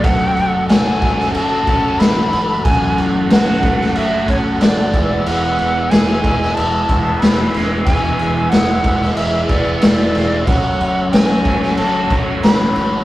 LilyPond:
<<
  \new Staff \with { instrumentName = "Flute" } { \time 4/4 \key fis \minor \tempo 4 = 92 fis''4 gis''4 a''4 b''4 | gis''8 r8 fis''4 e''8 cis''8 d''4 | fis''4 gis''4 a''4 b''8 r8 | gis''4 fis''4 e''8 d''8 d''4 |
fis''4 gis''4 a''8 r8 b''4 | }
  \new Staff \with { instrumentName = "Transistor combo organ" } { \time 4/4 \key fis \minor << { e''1 | fis''2.~ fis''8 e''8~ | e''1~ | e''1~ |
e''1 | } \\ { <a fis' a'>1~ | <a fis' a'>2.~ <a fis' a'>8 <gis e' b'>8~ | <gis e' b'>1~ | <gis e' b'>1 |
<a fis' cis''>1 | } >> }
  \new Staff \with { instrumentName = "Distorted electric guitar" } { \time 4/4 \key fis \minor fis,4 fis'8 a8 fis'8 cis'8 e8 a8 | fis,4 fis'8 a8 fis'8 cis'8 e8 e,8 | e,4 gis'8 gis8 gis'8 b8 e8 gis8 | e,4 gis'8 gis8 gis'8 b8 e8 gis8 |
fis,4 fis'8 a8 fis'8 cis'8 e8 a8 | }
  \new Staff \with { instrumentName = "Fingered electric bass" } { \clef bass \time 4/4 \key fis \minor fis,,8 fis,,8 fis,,8 fis,,8 fis,,8 fis,,8 fis,,8 fis,,8 | fis,,8 fis,,8 fis,,8 fis,,8 fis,,8 fis,,8 fis,,8 e,,8 | e,,8 e,,8 e,,8 e,,8 e,,8 e,,8 e,,8 e,,8 | e,,8 e,,8 e,,8 e,,8 e,,8 e,,8 e,,8 e,,8 |
fis,,8 fis,,8 fis,,8 fis,,8 fis,,8 fis,,8 fis,,8 fis,,8 | }
  \new DrumStaff \with { instrumentName = "Drums" } \drummode { \time 4/4 <cymc bd>8 cymc8 <cymc sn>8 <cymc bd>16 sn16 cymc8 <cymc bd>8 <cymc sn>8 cymc8 | <cymc bd>8 cymc8 <cymc sn>8 <cymc bd>16 sn16 cymc8 <cymc bd>8 <cymc sn>8 <cymc bd>8 | cymc8 cymc8 <cymc sn>8 <cymc bd>16 sn16 cymc8 <cymc bd>8 <cymc sn>8 <cymc sn>8 | <cymc bd>8 cymc8 <cymc sn>8 <cymc bd>16 sn16 cymc8 <cymc bd>8 <cymc sn>8 <cymc sn>8 |
<cymc bd>8 cymc8 <cymc sn>8 <cymc bd>16 sn16 cymc8 <cymc bd>8 <cymc sn>8 cymc8 | }
>>